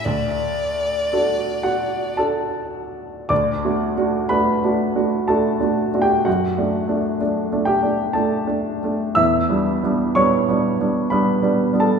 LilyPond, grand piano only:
\new Staff \with { instrumentName = "Grand piano" } { \time 3/4 \key d \major \tempo 4 = 61 << { r4. <fis' fis''>8 a''4 | <d'' d'''>4 <b' b''>4 <a' a''>8. <g' g''>16 | <fis' fis''>4 r8 <g' g''>8 <a' a''>4 | <e'' e'''>4 <cis'' cis'''>4 <b' b''>8. <a' a''>16 | } \\ { d,4 <d' fis' a'>4 <d' fis' a'>4 | \tuplet 3/2 { d,8 <a d' fis'>8 <a d' fis'>8 <a d' fis'>8 <a d' fis'>8 <a d' fis'>8 <a d' fis'>8 <a d' fis'>8 <a d' fis'>8 } | \tuplet 3/2 { fis,8 <a d'>8 <a d'>8 <a d'>8 <a d'>8 <a d'>8 <a d'>8 <a d'>8 <a d'>8 } | \tuplet 3/2 { e,8 <g b d'>8 <g b d'>8 <g b d'>8 <g b d'>8 <g b d'>8 <g b d'>8 <g b d'>8 <g b d'>8 } | } >> }